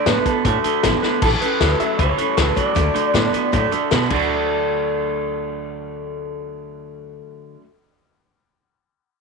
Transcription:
0.06 A2 D3 F#3 A3 B3 F#4 A4 B4, snare, closed hi-hat
0.25 D3 A3 B3 F#4 A4, muted upright bass stroke, kick, closed hi-hat
0.45 A2 D3 F#3 A3 F#4 A4, kick, closed hi-hat
0.64 D3 A3 F#4 A4, muted upright bass stroke, closed hi-hat
0.83 G#1 D3 F#3 A3 B3 F#4 A4, snare, closed hi-hat
1.02 D3 A3 B3 F#4 A4, muted upright bass stroke, snare
1.22 A1 A2 E3 G3 A3 C#4 A4, kick, crash
1.41 A2 E3 G3 A3 C#4 A4 B4, closed hi-hat
1.60 D2 A2 E3 F#3 G3 A3 C#4 A4, snare, closed hi-hat
1.80 A2 F#3 G3 A3 C#4 A4 E5, muted upright bass stroke, closed hi-hat
1.99 C#2 A2 E3 G3 A3 C#4 C#5, kick, closed hi-hat
2.03 A4
2.18 A2 E3 G3 A3 C#4 A4, closed hi-hat
2.37 C#2 A2 E3 F#3 G3 A3 C#4 A4, snare, closed hi-hat
2.45 B4
2.56 A2 F#3 G3 A3 C#4 A4 D5, kick, closed hi-hat
2.75 D2 D3 F#3 A3 F#4 A4, kick, closed hi-hat
2.94 D3 A3 F#4 A4, closed hi-hat
3.14 A2 D3 F#3 A3 B3 F#4 A4, snare, closed hi-hat
3.33 D3 A3 B3 F#4 A4, muted upright bass stroke, closed hi-hat
3.52 A2 D3 F#3 A3 F#4 A4, kick, closed hi-hat
3.71 D3 A3 F#4 A4, muted upright bass stroke, closed hi-hat
3.91 B2 D3 F#3 A3 B3 F#4 A4, snare, closed hi-hat
4.06 D3
4.10 D2 F#3 A3 D4 F#4, kick, crash
4.16 A3 F#4
4.23 A4

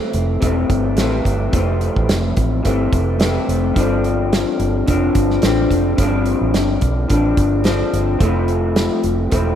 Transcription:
Already playing: E3 A3 C4
0.13 F1, closed hi-hat
0.41 E1 C3 E3 A3, kick, closed hi-hat
0.45 C4
0.70 G1, kick, closed hi-hat
0.96 A1 C3 E3 A3, snare, closed hi-hat
1.01 C4
1.25 G1, kick, closed hi-hat
1.51 F1 F2 C3 E3, kick, closed hi-hat
1.56 A3 C4
1.81 closed hi-hat
1.96 A1, kick
2.09 F1, snare, closed hi-hat
2.37 A1, kick, closed hi-hat
2.63 G1 C3 E3 A3 C4, kick, closed hi-hat
2.93 F1, kick, closed hi-hat
3.19 C3 E3 A3 C4, snare, closed hi-hat
3.48 F1, closed hi-hat
3.74 G1 G2 D3 F3, kick, closed hi-hat
3.79 C4 D4
4.04 closed hi-hat
4.33 snare, closed hi-hat
4.59 G1, closed hi-hat
4.86 F1 D3 F3 C4, kick, closed hi-hat
4.90 D4
5.15 G1, kick, closed hi-hat
5.30 snare
5.42 A1 D3 F3 C4 D4, snare, closed hi-hat
5.71 F1, kick, closed hi-hat
5.96 G1 G2 D3 F3, kick, closed hi-hat
6.01 C4 D4
6.26 closed hi-hat
6.41 A1
6.54 G1, snare, closed hi-hat
6.81 B1, kick, closed hi-hat
7.09 A1 D3 F3 C4 D4, kick, closed hi-hat
7.37 G1, kick, closed hi-hat
7.63 D3 F3 C4, snare, closed hi-hat
7.68 D4
7.93 G1, closed hi-hat
8.19 F1 F3 A3, kick, closed hi-hat
8.23 C4 E4
8.48 closed hi-hat
8.76 snare, closed hi-hat
9.04 F1, closed hi-hat
9.30 E1 F3 A3 C4, kick, closed hi-hat
9.34 E4

